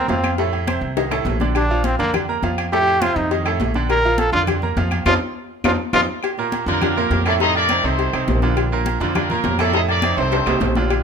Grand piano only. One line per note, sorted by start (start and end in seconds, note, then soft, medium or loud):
0.09 0.33 F3 medium
0.09 0.34 F4 medium
0.09 0.34 F5 medium
0.39 0.63 A2 medium
0.39 0.63 A3 loud
0.39 0.63 A4 medium
0.67 0.91 C3 medium
0.67 0.92 C4 medium
0.67 0.92 C5 medium
0.97 1.09 D#3 medium
0.97 1.09 D#4 medium
0.97 1.09 D#5 medium
1.11 1.35 A2 medium
1.11 1.36 A3 medium
1.11 1.36 A4 medium
1.40 1.65 D3 medium
1.40 1.65 D4 medium
1.40 1.65 D5 medium
1.70 1.94 F3 medium
1.70 1.94 F4 medium
1.70 1.95 F5 medium
1.99 2.23 D3 medium
1.99 2.24 D4 medium
1.99 2.24 D5 medium
2.29 2.41 A#3 medium
2.29 2.41 A#4 medium
2.29 2.41 A#5 medium
2.43 2.67 F3 medium
2.43 2.67 F4 medium
2.43 2.68 F5 medium
2.72 2.96 A2 medium
2.72 2.97 A3 medium
2.72 2.97 A4 medium
3.02 3.26 C3 medium
3.02 3.26 C4 medium
3.02 3.26 C5 medium
3.31 3.43 D#3 medium
3.31 3.44 D#4 medium
3.31 3.44 D#5 medium
3.46 3.70 A2 medium
3.46 3.70 A3 medium
3.46 3.70 A4 medium
3.75 3.99 D3 medium
3.75 3.99 D4 medium
3.75 3.99 D5 medium
4.05 4.28 F3 medium
4.05 4.29 F4 medium
4.05 4.29 F5 medium
4.33 4.57 D3 medium
4.33 4.58 D4 medium
4.33 4.58 D5 medium
4.63 4.75 A#3 medium
4.63 4.75 A#4 medium
4.63 4.75 A#5 medium
4.77 5.01 F3 medium
4.77 5.01 F4 medium
4.77 5.02 F5 medium
5.06 5.16 C4 medium
5.06 5.16 D#4 loud
5.06 5.16 F4 loud
5.65 5.74 C4 medium
5.65 5.74 D#4 loud
5.65 5.74 F4 medium
5.94 6.04 C4 medium
5.94 6.03 D#4 loud
5.94 6.04 F4 loud
6.38 6.62 A#2 loud
6.38 6.62 A#3 medium
6.38 6.63 A#4 medium
6.68 6.80 D3 medium
6.68 6.80 D4 medium
6.68 6.80 F4 medium
6.82 6.94 D3 medium
6.82 6.94 D4 medium
6.82 6.94 F4 medium
6.97 7.21 A#2 medium
6.97 7.21 A#3 medium
6.97 7.21 A#4 loud
7.26 7.38 A2 loud
7.26 7.38 A3 loud
7.26 7.38 A4 medium
7.41 7.65 A2 loud
7.41 7.65 A3 medium
7.41 7.65 A4 medium
7.70 7.82 C3 medium
7.70 7.82 C4 medium
7.70 7.82 D#4 medium
7.84 8.08 C3 medium
7.84 8.08 C4 loud
7.84 8.08 D#4 medium
8.13 8.37 C3 medium
8.13 8.37 C4 medium
8.13 8.37 D#4 medium
8.43 8.66 D3 medium
8.43 8.67 D4 medium
8.43 8.67 F4 medium
8.72 8.96 A#2 medium
8.72 8.96 A#3 medium
8.72 8.96 A#4 loud
9.00 9.13 D3 medium
9.00 9.13 D4 medium
9.00 9.13 F4 medium
9.16 9.28 D3 medium
9.16 9.28 D4 medium
9.16 9.28 F4 medium
9.30 9.54 A#2 medium
9.30 9.55 A#3 medium
9.30 9.55 A#4 loud
9.60 9.71 A2 loud
9.60 9.72 A3 medium
9.60 9.72 A4 loud
9.74 9.98 A2 medium
9.74 9.98 A3 loud
9.74 9.98 A4 medium
10.03 10.15 C3 medium
10.03 10.15 C4 medium
10.03 10.16 D#4 medium
10.17 10.41 C3 medium
10.17 10.42 C4 medium
10.17 10.42 D#4 medium
10.46 10.70 C3 medium
10.46 10.71 C4 medium
10.46 10.71 D#4 medium
10.76 11.00 D3 medium
10.76 11.00 D4 medium
10.76 11.01 F4 medium